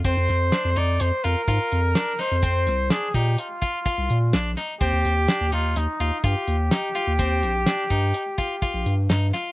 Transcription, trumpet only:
\new Staff \with { instrumentName = "Trumpet" } { \time 5/4 \key ees \major \tempo 4 = 126 c''4. d''8 c''8 bes'2 c''8~ | c''4 aes'8 g'8 f'2~ f'8 r8 | g'4. f'8 ees'4 g'2~ | g'1 r4 | }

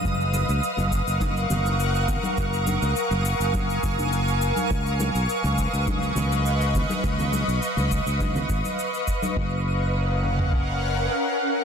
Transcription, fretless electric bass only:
\new Staff \with { instrumentName = "Fretless electric bass" } { \clef bass \time 4/4 \key fis \major \tempo 4 = 103 fis,,8. cis,16 r16 fis,,8 fis,,8. fis,,4~ fis,,16 r16 | fis,,8. cis,16 r16 fis,,8 fis,,8. fis,,4~ fis,,16 r16 | cis,8. b,,16 r16 cis,8 cis,8. cis,4~ cis,16 r16 | cis,8. b,,16 r16 cis,8 cis,8. gis,,16 r4 r16 |
fis,,2. r4 | }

